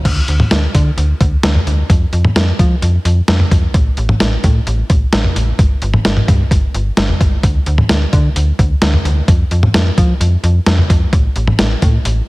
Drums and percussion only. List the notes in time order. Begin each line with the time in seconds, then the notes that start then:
0.05 kick, closed hi-hat, crash
0.28 closed hi-hat
0.40 mid tom
0.51 snare, closed hi-hat
0.75 kick, closed hi-hat
0.98 closed hi-hat
1.21 kick, closed hi-hat
1.43 snare, closed hi-hat
1.55 mid tom
1.67 closed hi-hat
1.90 kick, closed hi-hat
2.13 closed hi-hat
2.25 mid tom
2.36 snare, closed hi-hat
2.59 kick, closed hi-hat
2.82 closed hi-hat
3.05 closed hi-hat
3.28 snare, closed hi-hat
3.40 mid tom
3.51 kick, closed hi-hat
3.74 kick, closed hi-hat
3.97 closed hi-hat
4.09 mid tom
4.20 snare, closed hi-hat
4.44 kick, closed hi-hat
4.67 closed hi-hat
4.90 kick, closed hi-hat
5.13 snare, closed hi-hat
5.24 mid tom
5.36 closed hi-hat
5.59 kick, closed hi-hat
5.82 closed hi-hat
5.94 mid tom
6.05 snare, closed hi-hat
6.17 mid tom
6.28 kick, closed hi-hat, mid tom
6.51 kick, closed hi-hat
6.74 closed hi-hat
6.97 snare, closed hi-hat
7.09 mid tom
7.21 kick, closed hi-hat
7.43 kick, closed hi-hat
7.66 closed hi-hat
7.78 mid tom
7.89 snare, closed hi-hat
8.13 kick, closed hi-hat
8.36 closed hi-hat
8.59 kick, closed hi-hat
8.82 snare, closed hi-hat
8.94 mid tom
9.05 closed hi-hat
9.28 kick, closed hi-hat
9.51 closed hi-hat
9.63 mid tom
9.74 snare, closed hi-hat
9.98 kick, closed hi-hat
10.21 closed hi-hat
10.44 closed hi-hat
10.66 snare, closed hi-hat
10.78 mid tom
10.90 kick, closed hi-hat
11.13 kick, closed hi-hat
11.36 closed hi-hat
11.48 mid tom
11.59 snare, closed hi-hat
11.82 kick, closed hi-hat
12.05 closed hi-hat